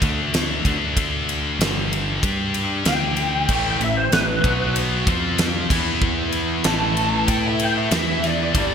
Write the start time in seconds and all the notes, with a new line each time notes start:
0.00 D2 D3 A3 D4, kick, ride
0.34 snare, ride
0.65 D2 D3 A3 D4, kick, ride
0.97 kick, ride
1.29 ride
1.59 G1 G2 D3 G3, snare, ride
1.93 ride
2.22 G2 G3 D4 G4, kick, ride
2.54 ride
2.85 D2 D3 A3 D4 G5, snare, ride
3.17 ride
3.49 A1 A2 E3 A3 E4 B4, kick, crash
3.80 A1 A2 E3 E5, ride
3.97 C5
4.12 A1 A2 E3 B4, snare, ride
4.44 B1 B2 F#3 B3 F#4, kick, ride
4.76 ride
5.07 F2 F3 C4 F4 G4, kick, ride
5.38 snare, ride
5.69 E2 E3 B3 E4, kick, snare, crash
6.02 kick
6.32 ride
6.64 A1 A2 E3 A3 B4 A5, snare, ride
6.97 ride
7.27 A2 A3 E4 A4 G5, kick, ride
7.48 E5
7.59 G5, ride
7.78 E5
7.90 E2 E3 B3 E4, snare, ride
8.24 D5, snare, ride
8.52 G1 G2 D3 G3 D4 A4, kick, ride
8.57 G3